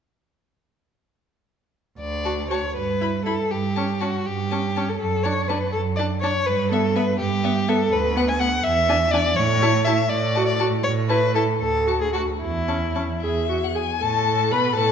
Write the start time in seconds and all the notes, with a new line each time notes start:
1.99 D2 D5
2.25 F#4 A5
2.50 F#4 C#5 A5
2.76 G2 B4
3.01 E4 B5
3.25 E4 A4 B5
3.51 G2 G4
3.76 C#4 A5
4.01 C#4 F#4 A5
4.26 G2 G4
4.51 C#4 A5
4.76 C#4 A5
4.89 A4
4.99 F#2 A4
5.23 D4 C#5 A5
5.48 D4 B4 A5
5.72 F#2 A4
5.96 D4 D5 A5
6.21 D4 C#5 A5
6.46 G2 B4
6.71 B3 A4 E5
6.95 B3 B4 E5
7.19 G2 G4
7.44 B3 E5
7.68 B3 A4 E5
7.92 D2 B4
8.16 B3 F#5
8.28 G#5
8.40 B3 F#5
8.64 E2 E5
8.89 D4 G#5
9.11 D4 D5 G#5
9.36 A2 C#5
9.62 E4 A5
9.85 E4 E5 A5
10.09 A2 D5
10.35 F#4 A5
10.47 D5
10.59 F#4 A5
10.83 A2 C#5
11.09 E4 B4 A5
11.35 E4 A4 A5
11.61 D2 A4
11.86 F#4 A5
12.01 G#4
12.13 F#4 A5
12.41 E2 E4
12.68 C#4 A5
12.95 C#4 A5
13.22 E2 G#4 E5
13.48 F#4
13.64 F#5
13.74 G#4 G#5
14.01 A2 A4 A5
14.51 B2 B4 B5
14.75 A2 A4 A5